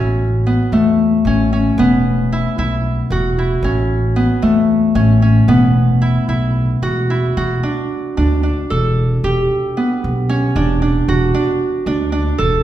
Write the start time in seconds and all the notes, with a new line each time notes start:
Already playing: A1 A3 B3 C#4 E4 F#4
0.47 B3
0.72 E2 A3
1.25 A1 C#4
1.53 C#4
1.78 E1 B3
2.32 E4
2.58 B1 E4
3.10 E1 F#4
3.38 E4
3.63 A1 C#4
4.16 B3
4.42 E2 A3
4.95 A1 C#4
5.22 C#4
5.48 E1 B3
6.02 E4
6.29 B1 E4
6.82 E1 F#4
7.10 E4
7.37 E1 F#4
7.63 D4
8.17 D2 D4
8.43 D4
8.70 E1 A4
9.24 E1 G4
9.77 B3
10.04 B1
10.29 C#4
10.56 E1 D4
10.82 D4
11.08 E1 F#4
11.34 D4
11.86 D2 D4
12.12 D4
12.38 E1 A4